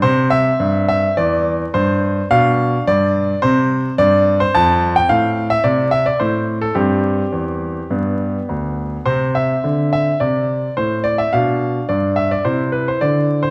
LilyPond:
<<
  \new Staff \with { instrumentName = "Grand piano" } { \time 4/4 \key c \major \tempo 4 = 107 << { c''8 e''4 e''8 d''4 c''4 | f''4 d''4 c''4 d''8. c''16 | a''8. g''16 f''8. e''16 d''8 e''16 d''16 c''8. a'16 | g'2. r4 |
c''8 e''4 e''8 d''4 c''8 d''16 e''16 | f''4 d''8 e''16 d''16 c''8 b'16 c''16 d''8. c''16 | } \\ { c'1 | d'2 c'2 | c'1 | c'2 b2 |
c'1 | d'2 e'2 | } >> }
  \new Staff \with { instrumentName = "Grand piano" } { \clef bass \time 4/4 \key c \major c4 g,4 e,4 g,4 | b,4 g,4 c4 g,4 | f,4 a,4 c4 a,4 | g,4 e,4 g,4 d,4 |
c4 d4 c4 a,4 | b,4 g,4 c4 d4 | }
>>